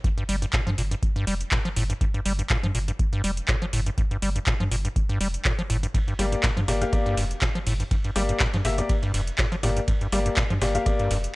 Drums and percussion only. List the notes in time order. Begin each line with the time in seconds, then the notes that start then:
0.04 kick, closed hi-hat
0.18 closed hi-hat
0.29 open hi-hat
0.42 closed hi-hat
0.53 kick, clap, closed hi-hat
0.67 closed hi-hat
0.78 open hi-hat
0.91 closed hi-hat
1.03 kick, closed hi-hat
1.16 closed hi-hat
1.27 open hi-hat
1.41 closed hi-hat
1.51 kick, clap, closed hi-hat
1.65 closed hi-hat
1.76 open hi-hat
1.90 closed hi-hat
2.01 kick, closed hi-hat
2.14 closed hi-hat
2.26 open hi-hat
2.39 closed hi-hat
2.50 kick, clap, closed hi-hat
2.63 closed hi-hat
2.75 open hi-hat
2.88 closed hi-hat
2.99 kick, closed hi-hat
3.13 closed hi-hat
3.24 open hi-hat
3.37 closed hi-hat
3.48 kick, clap, closed hi-hat
3.62 closed hi-hat
3.73 open hi-hat
3.86 closed hi-hat
3.98 kick, closed hi-hat
4.11 closed hi-hat
4.22 open hi-hat
4.36 closed hi-hat
4.46 kick, clap, closed hi-hat
4.60 closed hi-hat
4.71 open hi-hat
4.85 closed hi-hat
4.96 kick, closed hi-hat
5.09 closed hi-hat
5.21 open hi-hat
5.34 closed hi-hat
5.45 kick, clap, closed hi-hat
5.59 closed hi-hat
5.70 open hi-hat
5.83 closed hi-hat
5.94 kick, closed hi-hat, ride
6.08 closed hi-hat
6.19 open hi-hat, ride
6.32 closed hi-hat
6.43 kick, snare, clap, closed hi-hat, ride
6.57 closed hi-hat
6.68 open hi-hat, ride
6.82 closed hi-hat
6.93 kick, closed hi-hat, ride
7.06 closed hi-hat
7.17 snare, open hi-hat, ride
7.31 closed hi-hat
7.41 kick, snare, clap, closed hi-hat, ride
7.55 closed hi-hat, ride
7.67 open hi-hat
7.80 closed hi-hat
7.91 kick, closed hi-hat, ride
8.04 closed hi-hat, ride
8.16 open hi-hat, ride
8.29 closed hi-hat
8.40 kick, snare, clap, closed hi-hat, ride
8.54 snare, closed hi-hat
8.65 snare, open hi-hat, ride
8.78 closed hi-hat
8.89 kick, closed hi-hat, ride
9.03 closed hi-hat, ride
9.14 open hi-hat, ride
9.27 closed hi-hat
9.38 kick, snare, clap, closed hi-hat, ride
9.52 closed hi-hat, ride
9.63 open hi-hat, ride
9.77 closed hi-hat
9.88 kick, closed hi-hat, ride
10.01 closed hi-hat
10.12 open hi-hat, ride
10.26 closed hi-hat
10.36 kick, snare, clap, closed hi-hat, ride
10.50 closed hi-hat
10.62 snare, open hi-hat, ride
10.75 closed hi-hat
10.86 kick, closed hi-hat, ride
10.99 closed hi-hat
11.11 snare, open hi-hat, ride
11.24 closed hi-hat